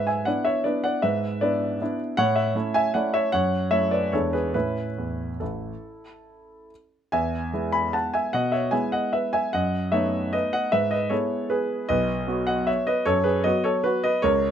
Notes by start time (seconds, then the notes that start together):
Already playing: G#2 B4 E5
0.07 E5 G#5
0.25 B3 D4 E4 D5 F#5
0.45 C#5 E5
0.64 B3 D4 E4 B4 D5
0.84 D5 F#5
1.02 G#2 B4 E5
1.41 B3 D4 E4 B4 D5
1.81 B3 D4 E4
2.17 A2 C#5 F#5
2.36 C#5 E5
2.55 A3 C#4 E4
2.74 E5 G#5
2.94 A3 C#4 E4 D5 F#5
3.14 C#5 E5
3.32 F#2 C#5 F#5
3.71 A3 C#4 E4 C#5 E5
3.91 B4 D5
4.12 E2 G#3 D4 E4 A4 C#5
4.33 G#4 B4
4.54 A2 C#4 E4 B4
4.98 E2
5.40 A1 E4 A4
7.12 E2 E5 G#5
7.53 G#3 B3 E4
7.72 G#5 B5
7.93 F#5 A5
8.14 E5 G#5
8.33 B2 D#5 F#5
8.52 C#5 E5
8.71 G#3 B3 E4 E5 G#5
8.92 D#5 F#5
9.13 B4 E5
9.33 E5 G#5
9.53 F#2 D#5 F#5
9.92 A3 B3 D#4 C#5 E5
10.33 B4 D#5
10.53 D#5 F#5
10.72 G#2 B4 E5
10.91 B4 D#5
11.10 G#3 B3 E4 A4 C#5
11.50 G#4 B4
11.89 B1 B4 D#5
12.27 F#3 B3 F#4
12.47 D#5 F#5
12.67 C#5 E5
12.87 B4 D#5
13.06 F#2 A4 C#5
13.24 G#4 B4
13.44 F#3 B3 F#4 B4 D#5
13.64 A4 C#5
13.84 F#4 B4
14.04 B4 D#5
14.22 C#2 A#4 C#5